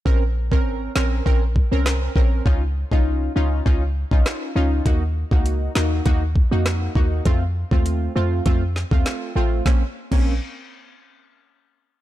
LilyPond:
<<
  \new Staff \with { instrumentName = "Synth stab" } { \time 4/4 \key bes \minor \tempo 4 = 100 <c' des' bes'>16 r8 <c' des' bes'>8. <c' des' bes'>8 <c' des' bes'>16 r8 <c' des' bes'>8. <c' des' bes'>8 | <des' ees' f'>16 r8 <des' ees' f'>8. <des' ees' f'>8 <des' ees' f'>16 r8 <des' ees' f'>8. <des' ees' f'>8 | <bes ees' ges'>16 r8 <bes ees' ges'>8. <bes ees' ges'>8 <bes ees' ges'>16 r8 <bes ees' ges'>8. <bes ees' ges'>8 | <a c' f'>16 r8 <a c' f'>8. <a c' f'>8 <a c' f'>16 r8 <a c' f'>8. <a c' f'>8 |
<bes c' des'>16 r8 <bes c' des'>8 r2 r8. | }
  \new Staff \with { instrumentName = "808-style bass" } { \clef bass \time 4/4 \key bes \minor bes,,8. aes,,8. bes,,8 bes,,8. c,8. bes,,8 | des,8. c,8. des,8 des,8. c,16 r8 des,8 | ees,8. des,8. ees,8 ees,8. f,8. ees,8 | f,8. ees,8. f,8 f,8. ees,16 r8 a,,8 |
bes,,16 r8 bes,,8 r2 r8. | }
  \new DrumStaff \with { instrumentName = "Drums" } \drummode { \time 4/4 bd8. bd16 r8 sn8 bd8 bd8 <ss sn>8 bd8 | bd8. bd16 r4 bd8. bd16 <ss sn>4 | <hh bd>8. bd16 hh8 sn8 <hh bd>8 bd8 <hh ss sn>8 bd8 | <hh bd>8. bd16 hh4 <hh bd>8 sn16 bd16 <hh sn>4 |
<bd sn>8. <cymc bd>16 r4 r4 r4 | }
>>